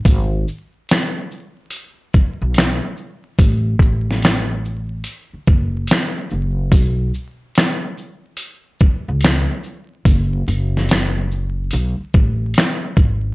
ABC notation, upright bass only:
X:1
M:4/4
L:1/16
Q:"Swing 16ths" 1/4=72
K:F#mix
V:1 name="Upright bass" clef=bass
G,,,2 z8 z B,,,2 z3 | =A,,,2 A,,,6 z2 F,,,2 z2 F,,,2 | B,,,2 z8 z C,,2 z3 | F,,,2 F,,,6 B,,, z =A,,,2 z2 G,,,2 |]